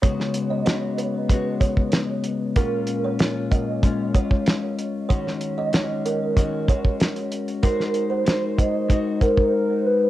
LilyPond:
<<
  \new Staff \with { instrumentName = "Kalimba" } { \time 4/4 \key des \mixolydian \tempo 4 = 95 des''8 r16 ees''16 des''8 ces''16 r8. des''16 r4 r16 | bes'8 r16 des''8 r16 ees''16 r8. des''8. r8. | des''8 r16 ees''16 des''8 bes'16 r8. des''16 r4 r16 | bes'8 r16 c''8 r16 ees''16 r8. c''8. r8. | }
  \new Staff \with { instrumentName = "Soft synth lead" } { \time 4/4 \key des \mixolydian r1 | r1 | r1 | r2 r8 bes'4 ces''8 | }
  \new Staff \with { instrumentName = "Clean electric guitar" } { \time 4/4 \key des \mixolydian <des aes ces' ges'>4 <des aes ces' ges'>4 <des aes ces' ges'>2 | <bes, aes des' f'>4 <bes, aes des' f'>4 <bes, aes des' f'>8 <aes des' f'>4. | <ees aes des' ges'>4 <ees aes des' ges'>4 <ees aes des' ges'>8 <aes des' ges'>4. | <aes ees' ges' c''>4 <aes ees' ges' c''>4 <aes ees' ges'>2 | }
  \new DrumStaff \with { instrumentName = "Drums" } \drummode { \time 4/4 <hh bd>16 sn16 hh8 <hh sn>8 hh8 <hh bd>8 <hh bd>16 bd16 <hh sn>8 hh8 | <hh bd>8 hh8 <hh sn>8 <hh bd>8 <hh bd>8 <hh bd>16 bd16 <hh sn>8 hh8 | <hh bd>16 sn16 hh8 <hh sn>8 hh8 <hh bd>8 <hh bd>16 bd16 <hh sn>16 hh16 hh16 hh16 | <hh bd>16 sn16 hh8 <hh sn>8 <hh bd>8 <hh bd>8 <hh bd>16 bd16 r4 | }
>>